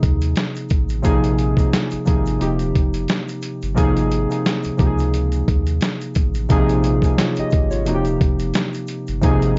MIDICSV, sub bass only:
0, 0, Header, 1, 2, 480
1, 0, Start_track
1, 0, Tempo, 681818
1, 735, Time_signature, 4, 2, 24, 8
1, 6749, End_track
2, 0, Start_track
2, 0, Title_t, "Sub bass"
2, 0, Program_c, 0, 38
2, 23, Note_on_c, 0, 39, 88
2, 243, Note_off_c, 0, 39, 0
2, 502, Note_on_c, 0, 33, 96
2, 723, Note_off_c, 0, 33, 0
2, 742, Note_on_c, 0, 34, 113
2, 1089, Note_off_c, 0, 34, 0
2, 1357, Note_on_c, 0, 32, 48
2, 1397, Note_off_c, 0, 32, 0
2, 1465, Note_on_c, 0, 32, 90
2, 1685, Note_off_c, 0, 32, 0
2, 1701, Note_on_c, 0, 27, 121
2, 1922, Note_off_c, 0, 27, 0
2, 1942, Note_on_c, 0, 29, 82
2, 2163, Note_off_c, 0, 29, 0
2, 2557, Note_on_c, 0, 31, 98
2, 2652, Note_off_c, 0, 31, 0
2, 2661, Note_on_c, 0, 32, 113
2, 3009, Note_off_c, 0, 32, 0
2, 3277, Note_on_c, 0, 37, 49
2, 3317, Note_off_c, 0, 37, 0
2, 3377, Note_on_c, 0, 37, 106
2, 3828, Note_off_c, 0, 37, 0
2, 3861, Note_on_c, 0, 39, 92
2, 4082, Note_off_c, 0, 39, 0
2, 4341, Note_on_c, 0, 33, 104
2, 4562, Note_off_c, 0, 33, 0
2, 4580, Note_on_c, 0, 34, 114
2, 4928, Note_off_c, 0, 34, 0
2, 5198, Note_on_c, 0, 32, 44
2, 5238, Note_off_c, 0, 32, 0
2, 5303, Note_on_c, 0, 32, 94
2, 5542, Note_on_c, 0, 27, 113
2, 5552, Note_off_c, 0, 32, 0
2, 5763, Note_off_c, 0, 27, 0
2, 5782, Note_on_c, 0, 29, 87
2, 6003, Note_off_c, 0, 29, 0
2, 6398, Note_on_c, 0, 31, 89
2, 6492, Note_off_c, 0, 31, 0
2, 6502, Note_on_c, 0, 32, 106
2, 6749, Note_off_c, 0, 32, 0
2, 6749, End_track
0, 0, End_of_file